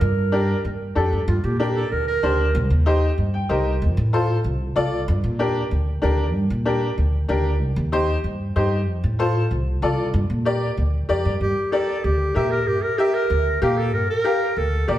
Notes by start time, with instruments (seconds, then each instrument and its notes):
Already playing: clarinet A#4
0.01 upright bass G2
0.32 upright piano D4 G4 A#4
0.65 upright bass G2
0.95 upright bass F2, upright piano D4 G4 A4
1.12 upright bass G2
1.28 upright bass G2, clarinet F4
1.44 upright bass A#2, clarinet G4
1.59 upright piano D4 G4 A#4, clarinet G4
1.76 clarinet A4
1.91 upright bass D2, clarinet A#4
2.08 clarinet A#4
2.23 upright bass D2, upright piano D4 G4 C5
2.55 upright bass C2
2.70 upright bass D#2
2.86 upright piano D#4 G4 C5
3.18 upright bass G2
3.34 upright piano G5
3.49 upright bass C2, upright piano D#4 G4 A#4 C5
3.82 upright bass F2
3.97 upright bass A2
4.13 upright piano F4 A4 C5
4.44 upright bass C2
4.76 upright bass C2, upright piano F4 A4 D5
5.08 upright bass G2
5.24 upright bass A#2
5.39 upright piano D4 G4 A#4
5.71 upright bass D2
6.02 upright bass D2, upright piano D4 G4 A#4
6.34 upright bass G2
6.50 upright bass A#2
6.65 upright piano D4 G4 A#4
6.98 upright bass D2
7.28 upright bass D2, upright piano D4 G4 A#4
7.61 upright bass C2
7.76 upright bass D#2
7.92 upright piano D#4 G4 C5
8.24 upright bass G2
8.56 upright bass G2, upright piano D#4 G4 C5
8.88 upright bass F2
9.04 upright bass A2
9.19 upright piano F4 A4 C5
9.51 upright bass C2
9.82 upright bass C2, upright piano F4 A4 D5
10.14 upright bass G2
10.30 upright bass A#2
10.45 upright piano G4 A#4 D5
10.77 upright bass D2
11.09 upright bass F2, upright piano G4 A#4 D5
11.25 upright bass G2
11.41 upright bass G2, clarinet G4
11.72 upright piano G4 A#4 D5, clarinet A4
12.04 upright bass D2, clarinet G4
12.35 upright bass A#2, upright piano G4 A#4 E5, clarinet G4
12.51 clarinet A#4
12.67 upright bass G2, clarinet G4
12.82 clarinet A#4
12.98 clarinet G4, upright piano G4 A#4 E5
13.14 clarinet A#4
13.30 upright bass D2
13.62 upright bass A#2, upright piano G4 A#4 F5, clarinet G4
13.78 clarinet A4
13.93 upright bass G2, clarinet A#4
14.10 clarinet A#4
14.24 upright piano G4 A#4 F5
14.56 upright bass D2, clarinet A4
14.88 upright bass A#2, upright piano G4 A#4 D5, clarinet G4